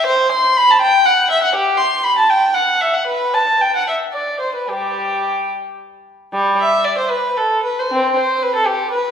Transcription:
violin
0.06 C5
0.32 C6
0.57 B5
0.71 A5
0.81 G5
1.05 F#5
1.30 E5
1.43 F#5
1.55 G4
1.78 C6
2.04 B5
2.18 A5
2.30 G5
2.54 F#5
2.81 E5
2.94 F#5
3.07 B4
3.34 A5
3.61 G5
3.76 F#5
3.88 E5
4.13 D5
4.40 C5
4.55 B4
4.69 G3 G4
6.33 G3
6.60 E5
6.84 D5
6.98 C5
7.10 B4
7.37 A4
7.63 B4
7.79 C5
7.91 C4
8.17 C5
8.43 B4
8.55 A4
8.66 G4
8.91 B4

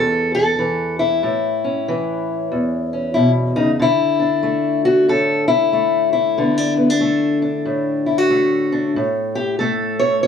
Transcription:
steel-string acoustic guitar
Already playing: E2 E3 A4
0.35 A4
0.59 E3
0.99 E4
1.23 A2
1.64 C#4
1.88 E3
2.52 E2
2.93 C#4
3.14 B2 E4
3.56 C#3 D#4
3.79 D3 E4
4.20 D4
4.43 A3
4.85 F#4
5.08 A2 A4
5.48 E4
5.73 A3
6.13 E4
6.38 D3 B3
6.58 D4
6.77 B3
6.90 D4
7.01 A3
7.42 D4
7.65 A2
8.06 E4
8.18 F#4
8.30 A3
8.72 D4
8.96 A2
9.35 G4
9.59 A3 A4
9.99 C#5
10.23 C#5

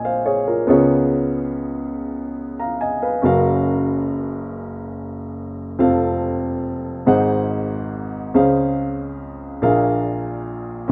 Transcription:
upright piano
Already playing: A#1 A#2 A#3 F4 G#4 C#5 D#5 G#5
0.05 C5 F5
0.26 G#4 C#5
0.47 F4 A#4
0.67 C#2 C#3 B3 F4 G#4 C#5
2.59 F5 A#5
2.81 D#5 G#5
3.02 B4 F5
3.22 F#1 F#2 C#4 F#4 A#4 F5
5.79 F1 F2 C4 F4 A4 F5
7.06 G#1 G#2 D#4 G#4 C5 F#5
8.34 C#2 C#3 C#4 G#4 C5 F5
9.62 A#1 A#2 D4 G#4 A#4 F5
10.88 C#4 F4

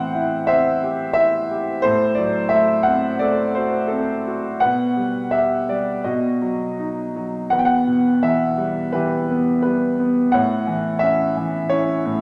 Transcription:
grand piano
Already playing: A2 E3 C4 C5 F#5 G5
0.15 E4
0.47 C4 C5 E5
0.83 G4
1.13 E4 E5
1.51 G4
1.82 A2 A4 C5
2.15 F#3 D5
2.49 E5
2.53 A3
2.83 F#5
2.87 C4
3.19 A3 A4 D5
3.55 F#4 C5
3.88 C4 A4
4.27 F#4
4.60 B2 B4 F#5
4.97 G3
5.31 G4 E5
5.69 G3 D5
6.04 B2 F#4 D#5
6.42 F#3
6.79 D#4
7.16 F#3
7.50 E2 B4 F#5
7.59 G5
7.65 F#5
7.87 B2
8.23 E3 E5
8.58 G3
8.92 E3 G4 B4
9.30 B3
9.62 G3 B4
9.99 B3
10.32 A2 C#5 F#5
10.67 E3
10.99 E5
11.03 C#4
11.37 E3
11.69 C#4 E4 C#5
12.05 A2

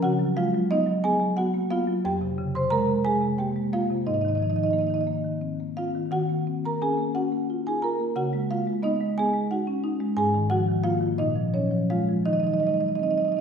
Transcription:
marimba
0.03 C#3 F#4 F#5
0.19 F#3
0.37 G#3 F4 F5
0.55 F#3
0.71 B3 D#4 D#5
0.86 F#3
1.04 B3 G#4 G#5
1.20 F#3
1.37 B3 F#4 F#5
1.54 A#3
1.70 B3 F4 F5
1.87 F#3
2.05 F2 G4 G5
2.21 C3
2.38 C#3
2.55 C3 C5 C6
2.70 G#3 A#4 A#5
2.88 C3
3.04 G#3 G#4 G#5
3.21 C3
3.38 A#3 G4 G5
3.56 G#3
3.73 A#3 F4 F5
3.90 C3
4.07 G#2 D#4 D#5
4.14 D#4 D#5
4.21 D#3 D#4 D#5
4.28 D#4 D#5
4.35 D#4 D#5
4.40 F3 D#5
4.44 D#4
4.50 D#4 D#5
4.56 D#3 D#4 D#5
4.63 D#4 D#5
4.71 A#3 D#4 D#5
4.79 D#4 D#5
4.87 D#3 D#4 D#5
4.94 D#4 D#5
5.01 D#5
5.07 A#3
5.24 D#3
5.41 C4
5.60 A#3
5.77 C4 F4 F5
5.95 D#3
6.11 D#3 F#4 F#5
6.29 A#3
6.47 C4
6.65 A#3 A#4 A#5
6.82 C#4 G#4 G#5
6.98 A#3
7.15 C#4 F#4 F#5
7.32 A#3
7.50 F4
7.67 D#4 G#4 G#5
7.82 F4 A#4 A#5
7.99 A#3
8.16 C#3 F#4 F#5
8.33 G#3
8.50 A#3 F4 F5
8.67 G#3
8.83 B3 D#4 D#5
9.01 G#3
9.18 B3 G#4 G#5
9.34 G#3
9.51 D#4 F#4 F#5
9.67 C#4
9.84 D#4
10.00 G#3
10.17 G#2 G#4 G#5
10.34 D#3
10.50 F3 F#4 F#5
10.68 D#3
10.84 A#3 F4 F5
11.01 D#3
11.18 A#2 D#4 D#5
11.36 F3
11.54 F#3 C#4 C#5
11.71 F3
11.90 G#3 F4 F5
12.09 F3
12.26 D#3 D#4 D#5
12.33 D#4 D#5
12.40 F#3 D#5
12.44 D#4 D#5
12.52 D#4 D#5
12.60 G#3 D#4 D#5
12.67 D#4 D#5
12.74 D#4 D#5
12.81 F#3 D#5
12.86 D#4 D#5
12.95 D#4 D#5
12.99 C4 D#4 D#5
13.11 D#4 D#5
13.17 F#3 D#4 D#5
13.25 D#4 D#5
13.32 D#5
13.37 C4 D#4

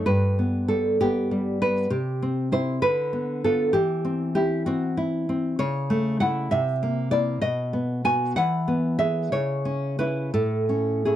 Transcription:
nylon-string guitar
0.06 G2 B4
0.39 B3
0.68 G3 A4
1.01 B3 G4
1.31 G3
1.62 B3 B4
1.90 C3 G4
2.22 C4
2.52 C4 E4 C5
2.82 D3 B4
3.13 B3
3.44 B3 F4 A4
3.73 E3 G4
4.05 C4
4.35 E4 G4
4.66 C4 F#4
4.97 E4
5.29 C4
5.59 C#3 C#5
5.90 A3
6.20 A3 E4 F#5
6.51 C3 E5
6.83 A#3
7.11 A#3 E4 D5
7.42 B2 D#5
7.73 B3
8.04 B3 F#4 G#5
8.36 E3 F#5
8.68 B3
8.99 B3 G#4 E5
9.32 C#3 C#5
9.65 C#4
9.99 C#4 E4 B4
10.34 A2 A4
10.69 C#4
11.05 C#4 E4 G#4

